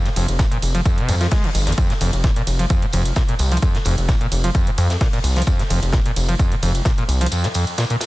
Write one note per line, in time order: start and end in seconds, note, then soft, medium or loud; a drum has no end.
0.05 0.09 C3 medium
0.05 snare soft
0.05 closed hi-hat medium
0.16 0.26 F1 loud
0.16 0.26 F2 medium
0.16 open hi-hat loud
0.16 ride medium
0.16 tambourine medium
0.28 0.47 F1 medium
0.28 closed hi-hat medium
0.39 0.46 A#2 medium
0.39 kick loud
0.39 snare loud
0.39 closed hi-hat medium
0.39 ride medium
0.39 tambourine medium
0.52 0.58 A#2 medium
0.52 closed hi-hat medium
0.62 0.81 F1 medium
0.62 open hi-hat loud
0.62 ride medium
0.62 tambourine medium
0.75 0.81 F3 medium
0.75 closed hi-hat medium
0.85 0.99 F2 medium
0.85 kick loud
0.85 closed hi-hat medium
0.85 ride medium
0.85 tambourine medium
0.98 1.10 C3 medium
0.98 closed hi-hat medium
1.09 1.15 F2 medium
1.09 1.27 F2 loud
1.09 open hi-hat loud
1.09 ride medium
1.09 tambourine medium
1.21 1.27 F3 medium
1.21 snare medium
1.21 closed hi-hat medium
1.31 1.45 G#3 medium
1.31 kick loud
1.31 snare loud
1.31 closed hi-hat medium
1.31 open hi-hat medium
1.31 ride medium
1.44 1.50 C3 medium
1.44 closed hi-hat medium
1.55 1.73 G1 loud
1.55 open hi-hat loud
1.55 ride medium
1.55 tambourine medium
1.67 1.73 E2 medium
1.67 snare medium
1.67 closed hi-hat soft
1.72 closed hi-hat medium
1.78 1.91 F2 medium
1.78 kick loud
1.78 closed hi-hat medium
1.78 ride medium
1.78 tambourine medium
1.90 1.94 C3 medium
1.90 snare soft
1.90 closed hi-hat soft
2.01 2.11 F1 loud
2.01 2.11 F2 medium
2.01 open hi-hat loud
2.01 ride medium
2.01 tambourine medium
2.13 2.31 F1 medium
2.13 closed hi-hat medium
2.24 2.31 A#2 medium
2.24 kick loud
2.24 snare loud
2.24 closed hi-hat medium
2.24 ride medium
2.24 tambourine medium
2.36 2.42 A#2 medium
2.36 closed hi-hat medium
2.47 2.66 F1 medium
2.47 open hi-hat loud
2.47 ride medium
2.47 tambourine medium
2.59 2.65 F3 medium
2.59 closed hi-hat soft
2.70 2.84 F2 medium
2.70 kick loud
2.70 closed hi-hat medium
2.70 ride medium
2.70 tambourine loud
2.82 2.86 C3 medium
2.82 closed hi-hat medium
2.92 3.12 F1 loud
2.92 3.03 F2 medium
2.92 open hi-hat loud
2.92 ride medium
2.92 tambourine medium
3.05 closed hi-hat medium
3.16 3.23 A#2 medium
3.16 kick loud
3.16 snare loud
3.16 closed hi-hat medium
3.16 ride medium
3.16 tambourine loud
3.29 3.35 A#2 medium
3.29 closed hi-hat medium
3.39 3.58 C2 loud
3.39 open hi-hat loud
3.39 ride medium
3.39 tambourine medium
3.52 3.58 F3 medium
3.52 closed hi-hat soft
3.57 closed hi-hat medium
3.62 3.76 F2 medium
3.62 kick loud
3.62 closed hi-hat medium
3.62 ride medium
3.62 tambourine medium
3.75 3.78 C3 medium
3.75 snare soft
3.75 closed hi-hat soft
3.85 3.95 F1 loud
3.85 3.96 F2 medium
3.85 open hi-hat loud
3.85 ride medium
3.85 tambourine medium
3.98 4.16 F1 medium
3.98 closed hi-hat medium
4.09 4.15 A#2 medium
4.09 kick loud
4.09 snare loud
4.09 closed hi-hat medium
4.09 ride medium
4.09 tambourine medium
4.21 4.27 A#2 medium
4.21 closed hi-hat medium
4.32 4.50 F1 medium
4.32 open hi-hat loud
4.32 ride medium
4.32 tambourine medium
4.44 4.50 F3 medium
4.44 closed hi-hat medium
4.55 4.69 F2 medium
4.55 kick loud
4.55 closed hi-hat medium
4.55 ride medium
4.55 tambourine medium
4.67 4.71 C3 medium
4.67 closed hi-hat medium
4.78 4.96 F2 loud
4.78 4.88 F2 medium
4.78 open hi-hat loud
4.78 ride medium
4.78 tambourine medium
4.90 snare medium
4.90 closed hi-hat medium
5.01 5.08 A#2 medium
5.01 kick loud
5.01 snare loud
5.01 closed hi-hat medium
5.01 open hi-hat medium
5.01 ride medium
5.13 5.19 A#2 medium
5.13 closed hi-hat medium
5.24 5.43 C2 loud
5.24 open hi-hat loud
5.24 ride medium
5.24 tambourine medium
5.36 5.42 F3 medium
5.36 snare medium
5.36 closed hi-hat soft
5.42 closed hi-hat medium
5.47 5.61 F2 medium
5.47 kick loud
5.47 closed hi-hat medium
5.47 ride medium
5.47 tambourine medium
5.59 5.63 C3 medium
5.59 snare soft
5.59 closed hi-hat medium
5.70 5.80 F1 loud
5.70 5.80 F2 medium
5.70 open hi-hat loud
5.70 ride medium
5.70 tambourine medium
5.82 6.00 F1 medium
5.82 closed hi-hat medium
5.93 6.00 A#2 medium
5.93 kick loud
5.93 snare loud
5.93 closed hi-hat medium
5.93 ride medium
5.93 tambourine medium
6.06 6.12 A#2 medium
6.06 closed hi-hat medium
6.16 6.35 F1 medium
6.16 open hi-hat loud
6.16 ride medium
6.16 tambourine medium
6.29 6.35 F3 medium
6.29 closed hi-hat medium
6.39 6.53 F2 medium
6.39 kick loud
6.39 closed hi-hat medium
6.39 ride medium
6.39 tambourine medium
6.52 6.55 C3 medium
6.52 closed hi-hat medium
6.62 6.81 F1 medium
6.62 6.73 F2 medium
6.62 open hi-hat loud
6.62 ride medium
6.62 tambourine medium
6.75 closed hi-hat medium
6.85 6.92 A#2 medium
6.85 kick loud
6.85 snare loud
6.85 closed hi-hat medium
6.85 ride medium
6.85 tambourine medium
6.98 7.04 A#2 medium
6.98 closed hi-hat medium
7.09 7.27 C2 loud
7.09 open hi-hat loud
7.09 ride medium
7.09 tambourine medium
7.21 7.27 F3 medium
7.21 closed hi-hat soft
7.26 closed hi-hat medium
7.32 7.45 F2 medium
7.32 closed hi-hat medium
7.32 ride medium
7.32 tambourine medium
7.43 7.47 C3 medium
7.43 snare soft
7.43 closed hi-hat medium
7.54 7.65 F2 medium
7.54 open hi-hat loud
7.54 ride medium
7.54 tambourine medium
7.67 closed hi-hat medium
7.78 7.85 A#2 medium
7.78 snare loud
7.78 closed hi-hat medium
7.78 ride medium
7.78 tambourine medium
7.90 7.96 A#2 medium
7.90 closed hi-hat medium
8.01 snare medium
8.01 open hi-hat loud
8.01 ride medium
8.01 tambourine medium